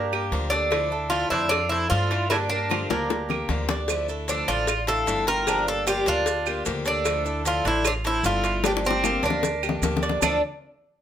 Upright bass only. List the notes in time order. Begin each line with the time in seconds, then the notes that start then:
Already playing: G2
0.32 D2
1.31 F2
1.91 G2
2.90 D2
3.49 D2
4.48 A1
5.08 G1
6.07 D2
6.67 D2
7.65 A1
8.23 G1
9.23 D2
9.82 D2
10.22 D2